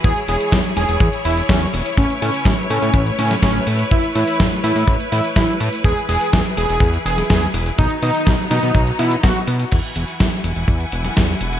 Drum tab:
CC |----------------|----------------|----------------|----------------|
HH |xxoxxxoxxxoxxxox|xxoxxxoxxxoxxxox|xxoxxxoxxxoxxxox|xxoxxxoxxxoxxxox|
TB |xx-xxx-xxx-xxx-x|xx-xxx-xxx-xxx-x|xx-xxx-xxx-xxx-x|xx-xxx-xxx-xxx-x|
SD |----o-o-----o---|----o------oo---|----o-------o---|----o------oo---|
BD |o---o---o---o---|o---o---o---o---|o---o---o---o---|o---o---o---o---|

CC |----------------|x---------------|
HH |xxoxxxoxxxoxxxox|xxxxxxxxxxxxxxxx|
TB |xx-xxx-xxx-xxx-x|----------------|
SD |----o-o-----o---|----o------oo---|
BD |o---o---o---o---|o---o---o---o---|